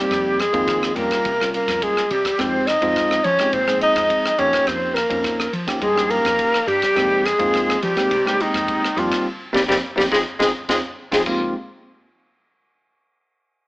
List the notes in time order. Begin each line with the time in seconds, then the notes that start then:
Already playing: G3 A#3 C4 D#4 G4
0.11 F2, kick, cross-stick, ride
0.39 G#3 G#4, cross-stick, ride
0.53 F2 D#3 A#3 C4 D#4 F4, kick, ride
0.68 kick, cross-stick, ride
0.83 cross-stick
0.95 F2 G3 A#3 C#4 F4 G4 A#4, ride
1.11 kick, cross-stick, ride
1.25 C3, kick, ride
1.40 G3 A#3 C#4 F4 A#4, cross-stick
1.54 A#3 A#4, ride
1.68 F2, kick, cross-stick, ride
1.82 G#3 G#4, kick, ride
1.97 muted fretless electric bass stroke, cross-stick
2.11 C3 G3 G4, ride
2.25 kick, cross-stick, ride
2.39 F2 F3 G#3 C4 D#4 G4 C5, kick, cross-stick, ride
2.67 D#4 D#5, cross-stick, ride
2.82 F2 F3 G#3 C4 D#4 F4, kick, ride
2.96 kick, cross-stick, ride
3.11 cross-stick
3.24 F3 C#4 C#5, ride
3.39 F3 G#3 C4 D#4 G4, kick, cross-stick, ride
3.53 A#2 C4 C5, kick, ride
3.67 F3 G#3 C4 D#4 G#4, cross-stick
3.81 D#4 D#5, ride
3.96 F2, kick, cross-stick, ride
4.10 kick, ride
4.25 muted fretless electric bass stroke, cross-stick
4.38 F2 F3 A#3 C#4 D#4 G4 C#5, ride
4.53 kick, cross-stick, ride
4.67 F2 C4 C5, kick, cross-stick, ride
4.94 A#3 A#4, cross-stick, ride
5.10 F2 F3 A#3 C#4 D#4 A#4, kick, ride
5.24 kick, cross-stick, ride
5.40 cross-stick
5.53 F3, ride
5.67 F3 A#3 C#4 D#4 G4, kick, cross-stick, ride
5.82 G2 G#3 G#4, kick, ride
5.95 F3 A#3 C#4 D#4 G4, cross-stick
6.10 A#3 A#4, ride
6.25 F2, kick, cross-stick, ride
6.39 kick, ride
6.54 muted fretless electric bass stroke, cross-stick
6.67 G2 G3 G4, ride
6.82 kick, cross-stick, ride
6.95 F2 G#3 A#3 C4 D#4 G4, kick, cross-stick, ride
7.25 G#3 G#4, cross-stick, ride
7.39 F2 G#3 A#3 C4 D#4 F4, kick, ride
7.54 kick, cross-stick, ride
7.70 cross-stick
7.82 F3 G3 G4, ride
7.97 G#3 A#3 C4 D#4 G4, kick, cross-stick, ride
8.11 C3, kick, ride
8.25 G#3 A#3 C4 D#4 G4, cross-stick
8.40 D#3 D#4, ride
8.54 F2, kick, cross-stick, ride
8.68 kick, ride
8.83 muted fretless electric bass stroke, cross-stick
8.96 F2 F3 G3 A#3 C4 D#4 F4 G4, ride
9.12 kick, cross-stick, ride
9.53 F2 G3 A#3 C4 D#4 G4, kick, snare
9.68 F2 G3 A#3 C4 D#4 G4, kick, snare
9.96 F2 G3 A#3 C4 D#4 G4, kick, snare
10.11 F2 G#3 C4 D#4 F4 G#4, kick, snare
10.39 F2 G#3 C4 D#4 F4 G#4, kick, snare
10.69 F2 G#3 C4 D#4 F4 G#4, kick, snare
11.12 F2 G#3 C4 D#4 F4 G#4, kick, snare
11.26 F1 G#3 A#3 C4 D#4 F4 G4, kick, crash